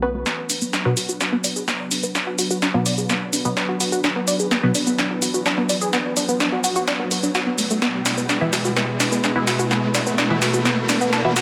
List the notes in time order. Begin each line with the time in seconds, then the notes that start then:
Already playing: B1 E3 A3 C#4 F#4
0.02 B3 C#4 F#4 B4
0.14 A3
0.26 F#3 B3 D4 B4, snare, riser, shaker
0.50 D4, open hi-hat, shaker
0.62 B3, shaker
0.73 D4, snare, shaker
0.85 B2 F#3 B3 F#4
0.97 F#4, open hi-hat, shaker
1.09 F#4, shaker
1.20 D4, snare, shaker
1.32 B3
1.44 D5, open hi-hat, shaker
1.56 G#4, shaker
1.68 B3, snare, shaker
1.91 D4, open hi-hat, shaker
2.03 B3, shaker
2.15 D4, snare, shaker
2.27 F#4
2.39 F#4, open hi-hat, shaker
2.51 F#4, shaker
2.62 D4, snare, shaker
2.74 B2 F#3 B3
2.86 D5, open hi-hat, shaker
2.98 G#4, shaker
3.09 B3, snare, shaker
3.33 D4, open hi-hat, shaker
3.45 B2 F#3 B3, shaker
3.57 D4, snare, shaker
3.69 F#4
3.80 F#4, open hi-hat, shaker
3.92 F#4, shaker
4.04 D4, snare, shaker
4.16 B3
4.28 D5, open hi-hat, shaker
4.40 G#4, shaker
4.51 B3, snare, shaker
4.63 B2 F#3 B3
4.75 D4, open hi-hat, shaker
4.87 B3, shaker
4.98 D4, snare, shaker
5.10 F#4
5.22 F#4, open hi-hat, shaker
5.34 F#4, shaker
5.46 D4, snare, shaker
5.58 B3
5.69 D5, open hi-hat, shaker
5.81 G#4, shaker
5.93 B3, snare, shaker
6.17 D4, open hi-hat, shaker
6.29 B3, shaker
6.40 D4, snare, shaker
6.52 F#4
6.64 F#4, open hi-hat, shaker
6.76 F#4, shaker
6.88 D4, snare, shaker
6.99 B3
7.11 B3, open hi-hat, shaker
7.23 D4, shaker
7.35 F#4, snare, shaker
7.47 B3
7.58 A3, open hi-hat, shaker
7.70 A3, shaker
7.82 B2 G#3 B3 E4 B4, snare, shaker
8.06 D4, snare, open hi-hat, shaker
8.17 B3, shaker
8.29 D4, snare, shaker
8.41 E3 B3 E4 F#4
8.53 F#4, snare, open hi-hat, shaker
8.65 F#4, shaker
8.76 B3, snare, shaker
9.00 D4, snare, open hi-hat, shaker
9.12 B3, shaker
9.24 D4, snare, shaker
9.36 E3 B3 E4 F#4
9.47 F#4, snare, open hi-hat, shaker
9.59 F#4, shaker
9.71 B3, snare, shaker
9.95 D4, snare, open hi-hat, shaker
10.06 B3, shaker
10.18 D4, snare, shaker
10.30 E3 B3 E4 F#4
10.42 F#4, snare, open hi-hat, shaker
10.54 F#4, shaker
10.65 B3, snare, shaker
10.89 D4, snare, open hi-hat, shaker
11.01 B3, shaker
11.13 D4, snare, shaker
11.25 E3 B3 E4 F#4
11.36 F#4, snare, open hi-hat, shaker